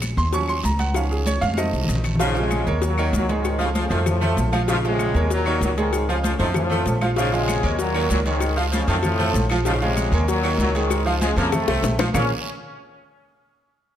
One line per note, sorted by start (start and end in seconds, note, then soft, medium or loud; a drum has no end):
0.00 0.12 A#1 loud
0.00 cowbell medium
0.00 high conga medium
0.00 short guiro medium
0.00 claves medium
0.00 maracas medium
0.17 0.61 D#2 loud
0.17 0.33 C6 loud
0.17 short guiro medium
0.17 maracas soft
0.33 0.54 F3 medium
0.33 0.54 F#3 medium
0.33 0.55 C#4 medium
0.33 0.49 C#6 loud
0.33 cowbell loud
0.33 high conga soft
0.33 long guiro medium
0.33 maracas medium
0.48 0.64 C6 loud
0.48 high conga soft
0.48 claves medium
0.48 maracas soft
0.63 1.37 C#2 medium
0.63 0.80 A#5 medium
0.63 cowbell medium
0.63 high conga medium
0.63 short guiro medium
0.63 maracas medium
0.79 0.95 F#5 medium
0.79 cowbell medium
0.79 high conga medium
0.79 short guiro medium
0.79 maracas soft
0.94 1.55 D#3 medium
0.94 1.55 F3 medium
0.94 1.55 C#4 medium
0.94 1.11 F5 medium
0.94 cowbell loud
0.94 long guiro medium
0.94 claves medium
0.94 maracas medium
1.11 1.27 G#4 medium
1.11 high conga soft
1.11 maracas soft
1.26 1.42 C#5 medium
1.26 cowbell medium
1.26 high conga loud
1.26 short guiro medium
1.26 maracas medium
1.41 1.71 F2 loud
1.41 1.57 F5 loud
1.41 cowbell medium
1.41 high conga medium
1.41 short guiro medium
1.41 maracas soft
1.54 2.17 D#3 medium
1.54 high conga medium
1.54 long guiro medium
1.58 2.17 A3 medium
1.58 2.17 C4 medium
1.58 2.01 D#5 medium
1.58 cowbell loud
1.58 claves medium
1.58 maracas medium
1.64 high conga medium
1.73 1.88 C2 medium
1.73 maracas soft
1.84 2.61 A#1 medium
1.84 low conga medium
1.84 short guiro medium
1.89 cowbell medium
1.89 maracas medium
1.95 low conga medium
2.04 cowbell medium
2.04 low conga medium
2.04 short guiro medium
2.04 claves medium
2.04 maracas soft
2.15 2.32 F3 medium
2.15 low conga loud
2.20 2.36 G#2 medium
2.20 2.66 C#3 loud
2.20 2.36 F3 loud
2.20 2.33 F4 medium
2.20 2.33 F5 medium
2.20 cowbell loud
2.20 high conga soft
2.20 maracas medium
2.35 2.80 C3 medium
2.35 2.61 F3 medium
2.35 2.61 F4 medium
2.35 2.61 F5 loud
2.35 high conga soft
2.35 maracas soft
2.39 2.81 G#3 loud
2.51 cowbell medium
2.51 high conga medium
2.51 claves medium
2.51 maracas medium
2.67 3.10 D#2 loud
2.67 2.93 A#3 medium
2.67 2.93 A#4 medium
2.67 2.93 C#5 medium
2.67 maracas soft
2.82 3.13 A#2 medium
2.82 3.14 F#3 loud
2.82 cowbell loud
2.82 high conga soft
2.82 maracas medium
2.98 3.33 D#3 medium
2.98 3.23 A#3 medium
2.98 3.24 A#4 medium
2.98 3.24 C#5 medium
2.98 high conga soft
2.98 claves medium
2.98 maracas soft
3.13 3.85 C#2 medium
3.13 3.28 A#2 medium
3.13 3.29 F#3 loud
3.13 cowbell medium
3.13 high conga medium
3.13 maracas medium
3.29 3.60 G#2 medium
3.29 3.61 D#3 loud
3.29 3.54 G#3 medium
3.29 3.55 G#4 medium
3.29 3.55 C#5 medium
3.29 cowbell medium
3.29 high conga medium
3.29 maracas soft
3.45 cowbell loud
3.45 high conga soft
3.45 claves medium
3.45 maracas medium
3.59 3.68 F2 medium
3.59 3.68 C#3 medium
3.59 3.68 F3 medium
3.59 3.86 F3 medium
3.59 3.86 F4 medium
3.59 3.86 F5 medium
3.59 high conga soft
3.59 maracas soft
3.75 3.91 F2 medium
3.75 3.91 C#3 medium
3.75 3.83 F3 medium
3.75 cowbell medium
3.75 high conga loud
3.75 maracas medium
3.90 4.34 F2 loud
3.90 3.99 F#2 medium
3.90 3.99 D#3 medium
3.90 4.06 F3 medium
3.90 4.16 A3 medium
3.90 4.17 A4 medium
3.90 4.17 C5 medium
3.90 cowbell medium
3.90 maracas soft
4.06 4.51 A2 medium
4.06 4.51 F3 loud
4.06 cowbell loud
4.06 high conga soft
4.06 low conga loud
4.06 claves medium
4.06 maracas medium
4.21 4.47 A3 medium
4.21 4.38 A3 medium
4.21 4.47 A4 medium
4.21 4.48 C5 medium
4.21 high conga soft
4.21 low conga medium
4.21 maracas soft
4.37 5.09 A#1 medium
4.37 cowbell medium
4.37 high conga medium
4.37 maracas medium
4.53 4.66 F3 loud
4.53 4.61 F3 medium
4.53 4.66 F4 loud
4.53 4.66 F5 medium
4.53 cowbell medium
4.53 high conga medium
4.53 claves medium
4.53 maracas soft
4.68 4.77 G#2 medium
4.68 5.15 C#3 loud
4.68 4.81 F3 medium
4.68 4.77 F3 loud
4.68 4.81 F4 medium
4.68 4.82 F5 medium
4.68 cowbell loud
4.68 high conga soft
4.68 maracas medium
4.84 5.28 C3 medium
4.84 5.10 F3 loud
4.84 5.29 G#3 loud
4.84 5.10 F4 loud
4.84 5.10 F5 medium
4.84 high conga soft
4.84 maracas soft
4.99 cowbell medium
4.99 high conga medium
4.99 claves medium
4.99 maracas medium
5.14 5.58 D#2 loud
5.14 5.41 A#3 medium
5.14 5.41 A#4 medium
5.14 5.41 C#5 medium
5.14 maracas soft
5.30 5.60 A#2 medium
5.30 5.60 F#3 loud
5.30 cowbell loud
5.30 high conga soft
5.30 maracas medium
5.46 5.81 D#3 medium
5.46 5.72 A#3 medium
5.46 5.72 A#4 loud
5.46 5.72 C#5 loud
5.46 high conga soft
5.46 claves medium
5.46 maracas soft
5.61 6.33 C#2 loud
5.61 5.70 A#2 medium
5.61 5.70 F#3 medium
5.61 cowbell medium
5.61 high conga medium
5.61 maracas medium
5.77 6.07 G#2 medium
5.77 6.07 D#3 medium
5.77 6.03 G#3 medium
5.77 6.03 G#4 medium
5.77 6.03 C#5 medium
5.77 cowbell medium
5.77 high conga medium
5.77 maracas soft
5.93 cowbell loud
5.93 claves medium
5.93 maracas medium
6.09 6.23 F2 medium
6.09 6.23 C#3 medium
6.09 6.34 F3 medium
6.09 6.17 F3 medium
6.09 6.34 F4 medium
6.09 6.34 F5 loud
6.09 high conga soft
6.09 maracas soft
6.24 6.39 F2 medium
6.24 6.39 C#3 medium
6.24 6.32 F3 medium
6.24 cowbell medium
6.24 high conga loud
6.24 maracas medium
6.39 6.83 F2 loud
6.39 6.47 F#2 medium
6.39 6.47 D#3 medium
6.39 6.56 F3 medium
6.39 6.65 A3 medium
6.39 6.65 A4 medium
6.39 6.66 C5 medium
6.39 cowbell medium
6.39 maracas soft
6.54 6.99 A2 medium
6.54 6.98 F3 loud
6.54 cowbell loud
6.54 high conga soft
6.54 low conga medium
6.54 claves medium
6.54 maracas medium
6.70 6.87 A3 medium
6.70 6.96 A3 medium
6.70 6.96 A4 medium
6.70 6.97 C5 medium
6.70 high conga soft
6.70 low conga medium
6.70 maracas soft
6.86 7.58 A#1 loud
6.86 cowbell medium
6.86 high conga medium
6.86 maracas medium
7.01 7.14 F3 medium
7.01 7.10 F3 medium
7.01 7.14 F4 medium
7.01 7.15 F5 loud
7.01 cowbell medium
7.01 high conga medium
7.01 claves medium
7.01 maracas soft
7.16 7.32 G#2 medium
7.16 7.64 C#3 loud
7.16 7.32 F3 loud
7.16 7.30 F3 medium
7.16 7.30 F4 medium
7.16 7.31 F5 medium
7.16 cowbell loud
7.16 long guiro medium
7.16 maracas medium
7.33 7.80 C3 medium
7.33 7.58 F3 medium
7.33 7.80 G#3 loud
7.33 7.58 F4 loud
7.33 7.58 F5 loud
7.33 high conga soft
7.33 maracas soft
7.48 cowbell medium
7.48 high conga medium
7.48 short guiro medium
7.48 claves medium
7.48 maracas medium
7.63 8.07 D#2 loud
7.63 7.89 A#3 medium
7.63 7.89 A#4 medium
7.63 7.90 C#5 medium
7.63 short guiro medium
7.63 maracas soft
7.79 8.09 A#2 medium
7.79 8.08 F#3 loud
7.79 cowbell loud
7.79 high conga soft
7.79 long guiro medium
7.79 maracas medium
7.95 8.30 D#3 medium
7.95 8.20 A#3 medium
7.95 8.21 A#4 medium
7.95 8.21 C#5 medium
7.95 high conga soft
7.95 claves medium
7.95 maracas soft
8.10 8.82 C#2 loud
8.10 8.18 A#2 medium
8.10 8.18 F#3 loud
8.10 cowbell medium
8.10 high conga medium
8.10 short guiro medium
8.10 maracas medium
8.26 8.55 G#2 medium
8.26 8.55 D#3 loud
8.26 8.52 G#3 medium
8.26 8.52 G#4 medium
8.26 8.52 C#5 medium
8.26 cowbell medium
8.26 short guiro medium
8.26 maracas soft
8.40 cowbell loud
8.40 high conga soft
8.40 long guiro medium
8.40 claves medium
8.40 maracas medium
8.57 8.65 F3 medium
8.57 8.82 F3 medium
8.57 8.83 F4 loud
8.57 8.83 F5 medium
8.57 high conga soft
8.57 maracas soft
8.72 8.87 F2 medium
8.72 8.87 C#3 medium
8.72 8.80 F3 medium
8.72 cowbell medium
8.72 high conga loud
8.72 short guiro medium
8.72 maracas medium
8.87 9.31 F2 loud
8.87 8.96 F#2 medium
8.87 8.96 D#3 loud
8.87 9.04 F3 medium
8.87 9.14 A3 medium
8.87 9.14 A4 medium
8.87 9.14 C5 medium
8.87 cowbell medium
8.87 short guiro medium
8.87 maracas soft
9.03 9.48 A2 medium
9.03 9.47 F3 loud
9.03 cowbell loud
9.03 high conga soft
9.03 low conga medium
9.03 long guiro medium
9.03 claves medium
9.03 maracas medium
9.19 9.35 A3 medium
9.19 9.45 A3 medium
9.19 9.45 A4 medium
9.19 9.45 C5 medium
9.19 high conga soft
9.19 low conga medium
9.19 maracas soft
9.34 10.06 A#1 medium
9.34 cowbell medium
9.34 high conga medium
9.34 short guiro medium
9.34 maracas medium
9.49 9.58 F3 medium
9.49 9.64 F3 loud
9.49 9.64 F4 loud
9.49 9.64 F5 loud
9.49 cowbell medium
9.49 high conga medium
9.49 short guiro medium
9.49 claves medium
9.49 maracas soft
9.65 9.73 G#2 medium
9.65 10.12 C#3 loud
9.65 9.73 F3 loud
9.65 9.79 F3 medium
9.65 9.79 F4 medium
9.65 9.79 F5 medium
9.65 cowbell loud
9.65 high conga soft
9.65 long guiro medium
9.65 maracas medium
9.81 10.25 C3 medium
9.81 10.07 F3 medium
9.81 10.25 G#3 loud
9.81 10.07 F4 medium
9.81 10.08 F5 loud
9.81 high conga soft
9.81 maracas soft
9.97 cowbell medium
9.97 high conga medium
9.97 short guiro medium
9.97 claves medium
9.97 maracas medium
10.12 10.55 D#2 loud
10.12 10.38 A#3 medium
10.12 10.39 A#4 medium
10.12 10.39 C#5 medium
10.12 short guiro medium
10.12 maracas soft
10.28 10.57 A#2 medium
10.28 10.57 F#3 loud
10.28 cowbell loud
10.28 high conga soft
10.28 long guiro medium
10.28 maracas medium
10.43 10.79 D#3 medium
10.43 10.69 A#3 medium
10.43 10.70 A#4 medium
10.43 10.69 C#5 medium
10.43 high conga soft
10.43 claves medium
10.43 maracas soft
10.58 11.31 C#2 loud
10.58 10.74 A#2 medium
10.58 10.74 F#3 loud
10.58 cowbell medium
10.58 high conga medium
10.58 short guiro medium
10.58 maracas medium
10.75 11.05 G#2 medium
10.75 11.06 D#3 loud
10.75 11.00 G#3 medium
10.75 11.01 G#4 medium
10.75 11.01 C#5 medium
10.75 cowbell medium
10.75 short guiro medium
10.75 maracas soft
10.90 cowbell loud
10.90 high conga soft
10.90 long guiro medium
10.90 claves medium
10.90 maracas medium
11.05 11.22 G#2 medium
11.05 11.21 F3 loud
11.05 11.14 F3 medium
11.05 11.32 F3 medium
11.05 11.32 F4 loud
11.05 11.32 F5 loud
11.05 high conga soft
11.05 maracas soft
11.20 11.36 C#3 medium
11.20 11.30 F3 medium
11.20 11.35 G#3 loud
11.20 cowbell medium
11.20 high conga loud
11.20 short guiro medium
11.20 maracas medium
11.36 11.65 F2 loud
11.36 11.52 C#3 medium
11.36 11.54 F3 medium
11.36 11.62 A3 medium
11.36 11.51 A#3 loud
11.36 11.63 A4 medium
11.36 11.63 C5 medium
11.36 cowbell medium
11.36 short guiro medium
11.36 maracas soft
11.52 11.96 C3 medium
11.52 11.95 A3 loud
11.52 cowbell loud
11.52 high bongo loud
11.52 high conga soft
11.52 low conga medium
11.52 long guiro medium
11.52 claves medium
11.52 maracas medium
11.67 11.82 C2 medium
11.67 11.85 A3 medium
11.67 11.94 A3 medium
11.67 11.94 A4 medium
11.67 11.94 C5 medium
11.67 high bongo loud
11.67 high conga soft
11.67 maracas soft
11.82 12.10 A#1 medium
11.82 cowbell medium
11.82 low bongo loud
11.82 high conga medium
11.82 short guiro medium
11.82 maracas medium
11.99 12.12 F3 loud
11.99 12.08 F3 medium
11.99 12.12 F4 medium
11.99 12.12 F5 medium
11.99 cowbell medium
11.99 low bongo loud
11.99 high conga medium
11.99 short guiro medium
11.99 claves medium
11.99 maracas soft
12.14 12.29 A#1 loud
12.14 12.26 A#2 medium
12.14 12.29 A#3 loud
12.14 12.29 C#4 loud
12.14 12.29 F4 medium
12.14 12.29 G#4 medium
12.14 12.29 A#4 medium
12.14 12.29 C#5 medium
12.14 12.29 F5 loud
12.14 low bongo loud
12.14 low conga loud
12.14 long guiro loud
12.14 claves loud
12.14 maracas loud